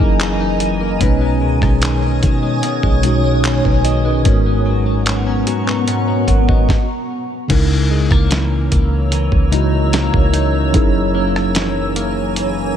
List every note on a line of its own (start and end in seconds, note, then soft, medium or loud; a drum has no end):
0.00 0.97 F#1 loud
0.00 1.01 F#2 medium
0.00 0.19 E3 medium
0.00 0.89 F#3 medium
0.00 0.79 A#3 medium
0.00 0.89 C#4 medium
0.00 0.40 D#4 medium
0.00 0.90 D#4 medium
0.00 0.90 E4 medium
0.00 0.91 G#4 medium
0.00 0.91 A#4 medium
0.00 0.98 D#5 medium
0.00 4.22 G#5 medium
0.00 0.97 A#5 medium
0.00 kick loud
0.20 0.59 E3 medium
0.20 clap loud
0.20 closed hi-hat medium
0.40 1.01 D#4 medium
0.60 1.09 E3 medium
0.60 closed hi-hat medium
0.81 1.09 A#3 medium
0.99 1.44 B1 loud
0.99 2.47 B2 medium
0.99 2.61 B2 medium
0.99 2.48 G#3 medium
0.99 2.48 C#4 medium
0.99 2.02 C#4 medium
0.99 2.49 D#4 medium
0.99 2.49 B4 medium
0.99 4.22 C#5 medium
0.99 4.22 D#6 medium
0.99 kick loud
0.99 closed hi-hat medium
1.21 1.61 G#3 medium
1.41 1.61 C#2 loud
1.41 1.81 D#3 medium
1.62 2.20 B1 loud
1.62 2.42 G#3 medium
1.62 kick loud
1.62 cross-stick medium
1.82 2.22 D#3 medium
1.82 clap loud
1.82 closed hi-hat medium
2.02 2.63 C#4 medium
2.22 2.82 B2 loud
2.22 3.03 D#3 medium
2.22 kick medium
2.22 closed hi-hat medium
2.43 2.83 G#3 medium
2.63 4.25 B2 medium
2.63 3.64 C#4 medium
2.63 closed hi-hat medium
2.83 3.61 B1 loud
2.83 3.24 G#3 medium
2.83 kick medium
3.02 4.13 B2 medium
3.02 3.44 D#3 medium
3.02 4.14 G#3 medium
3.02 4.14 C#4 medium
3.02 3.45 D#4 medium
3.02 3.45 F#4 medium
3.02 closed hi-hat medium
3.24 4.05 G#3 medium
3.44 3.84 D#3 medium
3.44 clap loud
3.44 closed hi-hat medium
3.65 4.23 B1 loud
3.65 4.25 C#4 medium
3.65 3.84 B4 medium
3.65 3.84 G#5 medium
3.65 kick medium
3.85 4.65 D#3 medium
3.85 4.04 F#4 medium
3.85 4.04 D#5 medium
3.85 closed hi-hat medium
4.05 4.46 G#3 medium
4.05 4.44 D#4 medium
4.05 4.44 B4 medium
4.24 5.43 G#1 loud
4.24 5.72 G#2 medium
4.24 5.86 G#2 medium
4.24 5.72 G#3 medium
4.24 6.66 B3 medium
4.24 5.73 B3 medium
4.24 5.73 C#4 medium
4.24 5.26 C#4 medium
4.24 5.73 F#4 medium
4.24 5.74 A#4 medium
4.24 6.66 F#5 medium
4.24 6.66 A#5 medium
4.24 6.66 C#6 medium
4.24 kick loud
4.24 closed hi-hat medium
4.46 4.86 B3 medium
4.66 5.06 F#3 medium
4.86 5.66 B3 medium
5.06 5.46 F#3 medium
5.06 clap loud
5.06 closed hi-hat medium
5.27 5.87 C#4 medium
5.47 6.27 F#3 medium
5.47 closed hi-hat medium
5.67 6.06 B3 medium
5.67 clap medium
5.87 6.77 G#2 medium
5.87 6.77 C#4 medium
5.87 closed hi-hat medium
6.08 6.47 B3 medium
6.08 6.27 C#5 medium
6.28 6.67 G#1 loud
6.28 6.77 F#3 medium
6.28 6.48 A#4 medium
6.28 6.47 F#5 medium
6.28 kick medium
6.28 closed hi-hat medium
6.48 6.77 B3 medium
6.48 6.87 F#4 medium
6.48 6.87 D#5 medium
6.48 kick loud
6.69 kick loud
6.69 snare medium
7.48 8.08 C#2 loud
7.48 8.96 C#3 medium
7.48 10.74 C#3 medium
7.48 8.96 G#3 medium
7.48 8.97 D#4 medium
7.48 8.97 E4 medium
7.48 8.98 A#4 medium
7.48 12.77 C#5 medium
7.48 10.71 A#5 medium
7.48 12.77 E6 medium
7.48 kick loud
7.48 closed hi-hat medium
7.48 crash loud
7.91 8.11 G#3 medium
8.11 8.69 C#2 loud
8.11 8.70 A#3 medium
8.11 kick loud
8.11 cross-stick medium
8.31 9.12 E3 medium
8.31 snare loud
8.31 closed hi-hat medium
8.71 9.30 C#2 loud
8.71 9.92 A#3 medium
8.71 kick medium
8.71 closed hi-hat medium
9.12 11.18 E3 medium
9.12 closed hi-hat medium
9.32 10.10 C#2 loud
9.32 kick medium
9.50 10.62 C#3 medium
9.50 10.62 G#3 medium
9.50 10.63 D#4 medium
9.50 10.33 D#4 medium
9.50 10.63 E4 medium
9.50 closed hi-hat medium
9.54 10.64 F#4 medium
9.93 11.14 A#3 medium
9.93 snare loud
9.93 closed hi-hat medium
10.14 10.72 C#2 medium
10.14 kick loud
10.33 11.59 D#4 medium
10.33 closed hi-hat medium
10.72 12.73 F#1 loud
10.72 12.77 F#2 medium
10.72 12.20 F#3 medium
10.72 12.21 C#4 medium
10.72 12.21 D#4 medium
10.72 12.21 E4 medium
10.72 12.22 G#4 medium
10.72 12.22 A#4 medium
10.72 12.77 G#5 medium
10.72 12.77 A#5 medium
10.72 kick loud
10.72 closed hi-hat medium
11.15 11.95 A#3 medium
11.36 cross-stick medium
11.55 12.35 E3 medium
11.55 snare loud
11.55 closed hi-hat medium
11.96 12.77 A#3 medium
11.96 closed hi-hat medium
12.36 12.77 E3 medium
12.36 closed hi-hat medium